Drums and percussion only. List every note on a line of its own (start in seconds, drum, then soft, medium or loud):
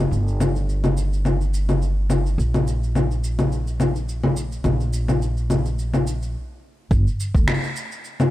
0.12 shaker soft
0.28 shaker soft
0.40 low conga medium
0.40 shaker medium
0.56 shaker soft
0.69 shaker soft
0.84 low conga medium
0.84 shaker soft
0.97 shaker medium
1.13 shaker soft
1.25 low conga medium
1.25 shaker soft
1.41 shaker soft
1.54 shaker medium
1.69 low conga medium
1.69 shaker soft
1.82 shaker soft
2.10 low conga medium
2.10 shaker medium
2.26 shaker soft
2.39 shaker soft
2.54 low conga medium
2.54 shaker soft
2.67 shaker medium
2.83 shaker soft
2.95 low conga medium
2.95 shaker soft
3.11 shaker soft
3.24 shaker medium
3.39 low conga medium
3.39 shaker soft
3.52 shaker soft
3.67 shaker soft
3.80 low conga medium
3.80 shaker medium
3.96 shaker soft
4.09 shaker soft
4.24 low conga medium
4.37 shaker medium
4.52 shaker soft
4.64 low conga medium
4.64 shaker soft
4.80 shaker soft
4.93 shaker medium
5.08 low conga medium
5.08 shaker soft
5.22 shaker soft
5.37 shaker soft
5.50 low conga medium
5.50 shaker medium
5.65 shaker soft
5.79 shaker soft
5.93 low conga medium
5.93 shaker soft
6.07 shaker medium
6.22 shaker soft
6.91 kick loud
6.91 shaker soft
7.07 shaker soft
7.20 shaker medium
7.35 kick medium
7.35 shaker soft
7.48 finger snap loud
7.48 low conga medium
7.48 shaker soft
7.63 shaker soft
7.76 shaker medium
7.92 shaker soft
8.04 shaker soft
8.20 low conga medium
8.20 shaker soft